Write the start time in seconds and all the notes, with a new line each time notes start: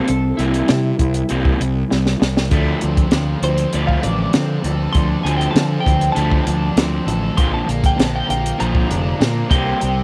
0.08 C2 C3 G3 C4 A4, closed hi-hat
0.37 C2 C3 G3 A#3 E4, closed hi-hat
0.54 closed hi-hat
0.68 C3 G3, snare, closed hi-hat
0.99 C2 C3 G3, kick, closed hi-hat
1.14 closed hi-hat
1.29 C2 C3 G3 A#3, closed hi-hat
1.45 kick
1.61 C2 C3 G3, closed hi-hat
1.90 C2 C3 G3, snare
2.06 snare
2.20 C2 C3 G3, snare
2.37 snare
2.51 D2 D3 F3 A3, kick, closed hi-hat
2.81 D2 D3 F3 C4, closed hi-hat
2.97 kick, closed hi-hat
3.11 D2 D3 F3, snare, closed hi-hat
3.42 D2 D3 F3 C4 C5, closed hi-hat
3.58 closed hi-hat
3.73 D2 D3 F3 A3 D5, closed hi-hat
3.87 F5, kick
4.03 A1 D3 F3 D4 D5, closed hi-hat
4.33 D3 F3 C4, snare, closed hi-hat
4.64 D2 D3 F3 A4, closed hi-hat
4.93 D2 D3 F3 C6, kick, closed hi-hat
5.10 A5
5.24 D2 D3 F3 A3 C4 G#5, closed hi-hat
5.38 G5, closed hi-hat
5.51 A5
5.55 D3 F3, snare, closed hi-hat
5.67 G#5
5.80 G5
5.86 D2 D3 F3 C4, kick, closed hi-hat
6.01 closed hi-hat
6.12 D3 F3 A5, closed hi-hat
6.17 D2 F3 A3
6.31 kick
6.47 D2 D3 F3 D4, closed hi-hat
6.76 D2 D3 F3 C4, snare, closed hi-hat
7.06 A1 D3 F3 A4, closed hi-hat
7.37 A#1 A#2 D3 F3 C6, kick, closed hi-hat
7.54 A5
7.67 A#1 A#2 D3 A#3 G5, closed hi-hat
7.84 G5, kick, closed hi-hat
7.97 A#1 A#2 D3 F3, snare, closed hi-hat
8.02 A5
8.16 G5
8.27 A#1 A#2 D3 A#3 G5, closed hi-hat
8.46 closed hi-hat
8.58 A#1 A#2 D3 F3 A#5, closed hi-hat
8.75 kick
8.90 F1 A#2 D3 D4, closed hi-hat
9.19 A#2 D3 A#3, snare, closed hi-hat
9.49 C2 C3 G3 A#3 G5, kick, closed hi-hat
9.80 C2 C3 G3, closed hi-hat